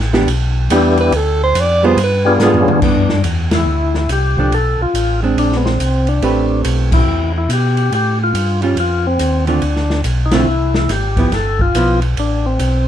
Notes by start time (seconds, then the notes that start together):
Already playing: A1
0.00 snare
0.13 E3 B3 D4 G4, snare
0.27 B1, ride
0.70 E2 E3 G3 B3 D4 E4 G4, hi-hat pedal, ride
0.98 B4, ride
1.12 D2, ride
1.17 A4
1.44 C5
1.55 F2, hi-hat pedal, ride
1.60 D5
1.83 G3 B3 F4 G#4 C5
1.96 G2, ride
2.03 B4
2.25 G3 B3 D4 F4 G#4
2.39 G#2 G3 B3 F4 G#4, snare, hi-hat pedal
2.54 floor tom
2.61 C#4
2.66 G#2 D4, floor tom
2.82 G2 E3 B3 D4, kick, crash
3.09 snare
3.24 E2, hi-hat pedal, ride
3.51 E4, snare, ride
3.66 D2
3.94 E4, snare
4.09 C2 G4, hi-hat pedal, ride
4.37 F3 A3 D4, kick
4.51 B1 A4, ride
4.79 B1 F4
4.93 A1, hi-hat pedal, ride
5.23 G#3 C4 D4
5.36 A#1 D4, ride
5.52 snare
5.56 B3
5.65 C4, snare
5.79 C2, hi-hat pedal, ride
6.07 D4, ride
6.21 A1 A3 C4 G4 B4, ride
6.64 B1, hi-hat pedal, ride
6.92 E4, kick, crash
7.07 E2
7.38 E4
7.49 B2, hi-hat pedal, ride
7.53 G4
7.77 ride
7.92 A2 G4, ride
8.24 F4
8.34 G2, hi-hat pedal, ride
8.62 G3 C#4 F4, ride
8.77 F2 F4, ride
9.07 C4
9.19 D#2, hi-hat pedal, ride
9.47 D3 A3 C4 D4 F4, ride
9.62 D2, ride
9.76 snare
9.90 snare
10.04 B1, hi-hat pedal, ride
10.26 D#4
10.31 D3 A3 C4 E4 F4, snare, ride
10.46 C2
10.74 E4, snare
10.89 G#1 G4, snare, hi-hat pedal, ride
11.17 F3 B3 E4, kick, ride
11.32 G1 A4, snare, ride
11.59 F4, kick
11.74 B1 F3 B3 E4, hi-hat pedal, ride
12.02 ride
12.17 A1 D4, ride
12.46 C4
12.59 B1, hi-hat pedal, ride